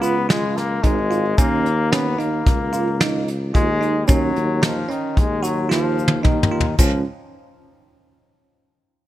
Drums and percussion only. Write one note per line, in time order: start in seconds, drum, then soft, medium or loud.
0.03 closed hi-hat medium
0.03 shaker soft
0.30 snare medium
0.30 closed hi-hat medium
0.57 snare soft
0.57 closed hi-hat medium
0.84 kick medium
0.84 closed hi-hat medium
1.11 closed hi-hat medium
1.11 shaker soft
1.38 kick loud
1.38 closed hi-hat medium
1.38 shaker soft
1.66 closed hi-hat medium
1.92 snare loud
1.92 closed hi-hat medium
2.20 closed hi-hat medium
2.46 kick loud
2.46 snare soft
2.46 closed hi-hat medium
2.73 closed hi-hat medium
2.73 shaker soft
3.01 snare medium
3.01 closed hi-hat medium
3.28 closed hi-hat medium
3.55 kick medium
3.55 closed hi-hat medium
3.82 closed hi-hat medium
4.08 kick loud
4.08 closed hi-hat medium
4.08 shaker medium
4.36 closed hi-hat medium
4.63 snare loud
4.63 closed hi-hat medium
4.91 closed hi-hat soft
5.17 kick medium
5.17 closed hi-hat medium
5.44 closed hi-hat medium
5.44 shaker soft
5.71 snare medium
5.99 shaker soft
6.08 high tom medium
6.24 kick medium
6.24 mid tom medium
6.43 mid tom medium
6.60 floor tom medium
6.78 kick loud
6.78 crash medium
6.78 shaker medium